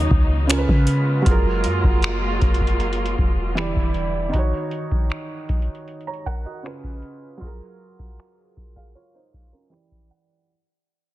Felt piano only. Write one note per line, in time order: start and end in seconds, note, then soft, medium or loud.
0.00 0.43 D#3 medium
0.00 0.44 D#4 medium
0.00 0.49 F#4 medium
0.00 0.47 C#5 medium
0.47 1.25 C#3 medium
0.47 1.26 C#4 medium
0.47 1.24 F4 medium
0.52 0.57 A#4 medium
0.58 1.31 B4 medium
1.22 3.51 F#3 medium
1.22 3.52 F4 medium
1.28 3.54 G#4 medium
1.28 3.55 A#4 medium
3.55 4.33 E3 medium
3.55 4.34 E4 medium
3.55 4.34 G4 medium
3.60 4.35 D5 medium
4.29 6.58 D#3 medium
4.29 6.60 D#4 medium
4.36 5.48 F#4 medium
4.36 5.49 C#5 medium
6.07 6.26 C#5 medium
6.07 6.25 A#5 medium
6.26 6.45 A#4 medium
6.26 6.44 F#5 medium
6.46 6.82 F#4 medium
6.46 6.82 D#5 medium
6.63 7.41 C#3 medium
6.63 7.41 C#4 medium
6.63 7.39 F4 medium
6.67 7.43 B4 medium
7.37 9.66 F#3 medium
7.37 8.54 F4 medium
7.44 8.56 G#4 medium
7.44 8.57 A#4 medium
8.76 8.95 G#4 soft
8.76 8.94 F5 medium
8.95 9.14 F4 medium
8.95 9.14 C#5 medium
9.15 9.51 D#4 medium
9.15 9.51 C5 medium
9.53 9.90 C#4 soft
9.53 9.89 A#4 medium
9.70 10.48 E3 medium
9.70 10.49 E4 medium
9.70 10.49 G4 medium
9.70 10.08 G5 medium
9.74 10.50 D5 medium
10.11 10.47 F#5 medium